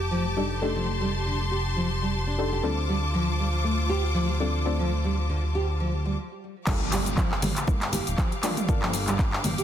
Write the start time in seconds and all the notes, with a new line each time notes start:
Already playing: F1 D4 D#4 G4 A5 D6
0.11 F3
0.36 G3 D4 D#4 G4 A4
0.62 A3 D4 D#4 G4 A4 C6
0.76 F3
1.01 G3
1.26 D3
1.51 G4
1.76 F3
2.02 G3
2.27 D4
2.38 D4 D#4 G4 A4
2.52 G4
2.63 D2 G3 C4 D4 F4 A4 C5 D6
2.89 G3
3.14 F3
3.39 G3
3.64 A3
3.89 G4
4.14 F3
4.40 G3 C4 D4 F4 A4
4.65 A3 C4 D4 F4 A4
4.79 F3
5.05 G3
5.30 D3
5.55 G4
5.80 F3
6.05 G3
6.67 G1 G3 A#3 D4 F4 G4 A4 F5 D6, kick, clap, crash, impact, shaker
6.92 G3, clap, open hi-hat, shaker
7.06 closed hi-hat, high conga, shaker
7.17 F3, kick, clap, shaker
7.31 clap
7.42 G1 G3, mid tom, open hi-hat, low conga, shaker
7.57 clap, closed hi-hat, shaker
7.67 G1 A#3, kick, high conga, shaker
7.82 clap, closed hi-hat
7.93 G4, open hi-hat, high conga, low conga, shaker
8.07 D1, closed hi-hat, shaker
8.18 F3, kick, clap, shaker
8.32 closed hi-hat
8.43 G3 A#3 D4 F4 A4, clap, mid tom, open hi-hat, shaker
8.57 closed hi-hat, mid tom, shaker
8.69 G1 A#3 D4 F4 A4, kick, shaker
8.82 F3, clap
8.94 open hi-hat, shaker
9.08 G3, clap, closed hi-hat, high conga, shaker
9.19 kick, clap, shaker
9.33 D3, clap
9.44 G1, mid tom, open hi-hat, low conga, shaker
9.58 G4, closed hi-hat, shaker